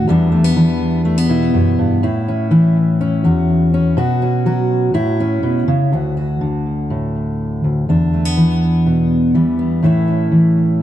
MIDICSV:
0, 0, Header, 1, 2, 480
1, 0, Start_track
1, 0, Key_signature, 2, "major"
1, 0, Tempo, 487805
1, 78, Time_signature, 4, 2, 24, 8
1, 10651, End_track
2, 0, Start_track
2, 0, Title_t, "Steel-string acoustic guitar"
2, 0, Program_c, 0, 25
2, 74, Note_on_c, 0, 40, 68
2, 84, Note_on_c, 0, 52, 62
2, 88, Note_on_c, 0, 55, 61
2, 93, Note_on_c, 0, 59, 63
2, 100, Note_on_c, 0, 62, 68
2, 309, Note_off_c, 0, 59, 0
2, 313, Note_on_c, 0, 57, 57
2, 434, Note_off_c, 0, 57, 0
2, 434, Note_on_c, 0, 59, 44
2, 545, Note_off_c, 0, 62, 0
2, 546, Note_off_c, 0, 52, 0
2, 550, Note_on_c, 0, 52, 60
2, 556, Note_on_c, 0, 62, 51
2, 1029, Note_off_c, 0, 59, 0
2, 1033, Note_on_c, 0, 57, 61
2, 1158, Note_off_c, 0, 57, 0
2, 1158, Note_on_c, 0, 59, 53
2, 1271, Note_on_c, 0, 47, 67
2, 1273, Note_off_c, 0, 62, 0
2, 1277, Note_on_c, 0, 64, 53
2, 1510, Note_off_c, 0, 40, 0
2, 1514, Note_on_c, 0, 42, 67
2, 1752, Note_off_c, 0, 42, 0
2, 1757, Note_on_c, 0, 43, 61
2, 1959, Note_off_c, 0, 52, 0
2, 1960, Note_off_c, 0, 47, 0
2, 1964, Note_off_c, 0, 64, 0
2, 1992, Note_off_c, 0, 59, 0
2, 1993, Note_off_c, 0, 43, 0
2, 1996, Note_off_c, 0, 55, 0
2, 1998, Note_on_c, 0, 45, 77
2, 2005, Note_on_c, 0, 64, 61
2, 2247, Note_on_c, 0, 61, 51
2, 2460, Note_off_c, 0, 64, 0
2, 2467, Note_on_c, 0, 52, 65
2, 2473, Note_on_c, 0, 64, 55
2, 2955, Note_off_c, 0, 61, 0
2, 2959, Note_on_c, 0, 61, 64
2, 3188, Note_off_c, 0, 64, 0
2, 3188, Note_on_c, 0, 40, 60
2, 3191, Note_off_c, 0, 45, 0
2, 3196, Note_on_c, 0, 66, 54
2, 3667, Note_off_c, 0, 61, 0
2, 3679, Note_on_c, 0, 61, 64
2, 3876, Note_off_c, 0, 52, 0
2, 3877, Note_off_c, 0, 40, 0
2, 3881, Note_off_c, 0, 66, 0
2, 3883, Note_off_c, 0, 61, 0
2, 3905, Note_on_c, 0, 47, 68
2, 3914, Note_on_c, 0, 66, 71
2, 4151, Note_on_c, 0, 61, 48
2, 4379, Note_off_c, 0, 66, 0
2, 4386, Note_on_c, 0, 54, 55
2, 4391, Note_on_c, 0, 66, 58
2, 4835, Note_off_c, 0, 47, 0
2, 4836, Note_off_c, 0, 54, 0
2, 4839, Note_off_c, 0, 61, 0
2, 4839, Note_off_c, 0, 66, 0
2, 4860, Note_on_c, 0, 45, 75
2, 4866, Note_on_c, 0, 64, 69
2, 5119, Note_on_c, 0, 61, 55
2, 5339, Note_off_c, 0, 45, 0
2, 5343, Note_on_c, 0, 47, 58
2, 5582, Note_off_c, 0, 47, 0
2, 5586, Note_on_c, 0, 49, 62
2, 5796, Note_off_c, 0, 64, 0
2, 5804, Note_off_c, 0, 61, 0
2, 5826, Note_off_c, 0, 49, 0
2, 5828, Note_on_c, 0, 38, 47
2, 5838, Note_on_c, 0, 66, 41
2, 6059, Note_off_c, 0, 66, 0
2, 6071, Note_on_c, 0, 66, 41
2, 6306, Note_on_c, 0, 50, 43
2, 6792, Note_on_c, 0, 45, 43
2, 7507, Note_off_c, 0, 38, 0
2, 7519, Note_on_c, 0, 38, 49
2, 7725, Note_off_c, 0, 66, 0
2, 7753, Note_off_c, 0, 45, 0
2, 7755, Note_off_c, 0, 38, 0
2, 7762, Note_on_c, 0, 40, 51
2, 7770, Note_on_c, 0, 62, 46
2, 8004, Note_on_c, 0, 57, 35
2, 8120, Note_off_c, 0, 57, 0
2, 8120, Note_on_c, 0, 59, 35
2, 8233, Note_off_c, 0, 50, 0
2, 8239, Note_on_c, 0, 52, 41
2, 8723, Note_on_c, 0, 47, 49
2, 9182, Note_off_c, 0, 52, 0
2, 9194, Note_on_c, 0, 52, 43
2, 9200, Note_off_c, 0, 47, 0
2, 9201, Note_on_c, 0, 55, 39
2, 9423, Note_off_c, 0, 59, 0
2, 9435, Note_on_c, 0, 59, 44
2, 9648, Note_off_c, 0, 52, 0
2, 9648, Note_off_c, 0, 59, 0
2, 9655, Note_off_c, 0, 40, 0
2, 9668, Note_on_c, 0, 45, 55
2, 9677, Note_on_c, 0, 52, 43
2, 9680, Note_off_c, 0, 55, 0
2, 9684, Note_on_c, 0, 57, 43
2, 9687, Note_off_c, 0, 62, 0
2, 9690, Note_on_c, 0, 61, 41
2, 9700, Note_on_c, 0, 64, 47
2, 9912, Note_off_c, 0, 61, 0
2, 9916, Note_on_c, 0, 61, 40
2, 10138, Note_off_c, 0, 52, 0
2, 10150, Note_on_c, 0, 52, 43
2, 10635, Note_off_c, 0, 45, 0
2, 10651, Note_off_c, 0, 52, 0
2, 10651, Note_off_c, 0, 57, 0
2, 10651, Note_off_c, 0, 61, 0
2, 10651, Note_off_c, 0, 64, 0
2, 10651, End_track
0, 0, End_of_file